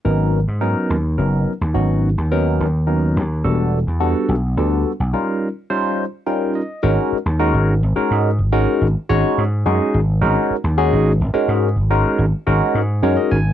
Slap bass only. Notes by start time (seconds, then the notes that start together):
0.05 G#1
0.48 G#2
0.90 D#2
1.19 F#1
1.61 D#2
1.75 G#1
2.18 D#2
2.60 D#2
3.17 D#2
3.45 E1
3.87 E2
4.29 B1
4.57 D2
5.00 B1
6.84 G#1
7.12 muted slap bass stroke
7.26 D#2
7.54 G#1
7.83 G#1
7.97 muted slap bass stroke
8.11 G#2
8.39 G#1
8.81 G#1
9.10 G#1
9.38 G#2
9.66 F#2
9.94 G#1
10.22 G#1
10.50 muted slap bass stroke
10.64 D#2
10.93 G#1
11.21 G#1
11.34 muted slap bass stroke
11.48 G#2
11.76 G#1
12.19 G#1
12.47 G#1
12.75 G#2
13.03 F#2
13.32 G#1